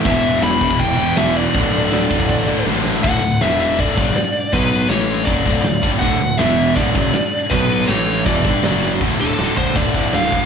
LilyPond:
<<
  \new Staff \with { instrumentName = "Lead electric guitar" } { \time 4/4 \key d \major \tempo 4 = 161 e''4 b''4 g''4 e''8 d''8~ | d''2. r4 | fis''4 e''8 e''8 d''2 | b'4 cis''4 d''4 d''8. r16 |
fis''4 e''4 d''2 | b'4 cis''4 d''4 d''8. r16 | r8 a'4 c''8 d''4 f''4 | }
  \new Staff \with { instrumentName = "Distorted electric guitar" } { \clef bass \time 4/4 \key d \major <e, b, e>2~ <e, b, e>8 <e, b, e>8 <e, b, e>4 | <d, a, d>2~ <d, a, d>8 <d, a, d>8 <d, a, d>4 | <d, a, d>8 <d, a,>8 <e, b, e>4 <d, a, d>8 <fis, cis fis>8 r4 | <b, fis b>4 <a, e a>4 <fis, cis fis>8 <d, a, d>8 <d, a,>8 <g, d g>8 |
<d, a, d>8 <d, a,>8 <e, b, e>4 <d, a, d>8 <fis, cis fis>8 r4 | <b, fis b>4 <a, e a>4 <e, b, e>8 <g, d g>8 <fis, cis fis>4 | <d, a, d>8 <d, a, d>8 <d, a, d>8 <d, a, d>8 <d, a, d>8 <d, a, d>8 <d, a, d>8 <d, a, d>8 | }
  \new Staff \with { instrumentName = "Distorted electric guitar" } { \clef bass \time 4/4 \key d \major <e, b, e>2~ <e, b, e>8 <e, b, e>8 <e, b, e>4 | <d, a, d>2~ <d, a, d>8 <d, a, d>8 <d, a, d>4 | r1 | r1 |
<d, a, d>8 <d, a,>8 <e, b, e>4 <d, a, d>8 <fis, cis fis>8 r4 | <b, fis b>4 <a, e a>4 <e, b, e>8 <g, d g>8 <fis, cis fis>4 | <d, a, d>8 <d, a, d>8 <d, a, d>8 <d, a, d>8 <d, a, d>8 <d, a, d>8 <d, a, d>8 <d, a, d>8 | }
  \new Staff \with { instrumentName = "Distorted electric guitar" } { \clef bass \time 4/4 \key d \major <e, b, e>4. <e, b, e>4. <e, b, e>4 | <d, a, d>4. <d, a, d>4. <d, a, d>4 | <d, a, d>8 <d, a,>8 <e, b, e>4 <d, a, d>8 <fis, cis fis>8 r4 | <b, fis b>4 <a, e a>4 <fis, cis fis>8 <d, a, d>8 <d, a,>8 <g, d g>8 |
<d, a, d>8 <d, a,>8 <e, b, e>4 <d, a, d>8 <fis, cis fis>8 r4 | <b, fis b>4 <a, e a>4 <e, b, e>8 <g, d g>8 <fis, cis fis>4 | <d, a, d>8 <d, a, d>8 <d, a, d>8 <d, a, d>8 <d, a, d>8 <d, a, d>8 <d, a, d>8 <d, a, d>8 | }
  \new Staff \with { instrumentName = "Picked electric bass" } { \clef bass \time 4/4 \key d \major e,,8 e,,8 e,,4 e,,8 e,,8 e,,4 | d,,8 d,,8 d,,8 d,,8 a,,8 d,,8 a,,4 | d,,8 d,,8 e,,4 d,,8 fis,,8 r4 | b,,4 a,,4 fis,,8 d,,8 d,,8 g,,8 |
d,,8 d,,8 e,,4 d,,8 fis,,8 r4 | b,,4 a,,4 e,,8 g,,8 fis,,4 | d,,8 d,,8 d,,8 d,,8 d,,8 d,,8 d,,4 | }
  \new DrumStaff \with { instrumentName = "Drums" } \drummode { \time 4/4 <cymc bd>8 cymc8 <cymc sn>8 <cymc bd>16 bd16 <cymc bd>8 cymc8 <cymc sn>8 cymc8 | <cymc bd>8 cymc8 <cymc sn>8 <cymc bd>16 bd16 <cymc bd>8 cymc8 sn8 sn8 | <cymc bd>4 <hho sn>4 <hho bd>8 bd8 <hho sn>4 | <hho bd>4 <hho sn>4 <hho bd>8 bd8 <hho sn>8 bd8 |
<hho bd>4 <hho sn>4 <hho bd>8 bd8 <hho sn>4 | <hho bd>4 <hho sn>4 <hho bd>8 bd8 <hho sn>8 sn8 | <cymc bd>4 <hho sn>8 bd8 <hho bd>8 bd8 <hho sn>8 bd8 | }
>>